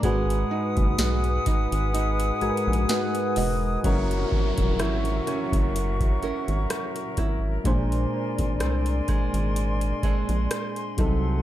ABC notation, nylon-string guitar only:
X:1
M:4/4
L:1/8
Q:"Swing 16ths" 1/4=63
K:F#mix
V:1 name="Nylon-string guitar"
G, D F D D2 [DFB] F | F,2 E C2 [CEA]2 E | A,,2 ^B, G,2 [G,B,=D]2 ^B,, |]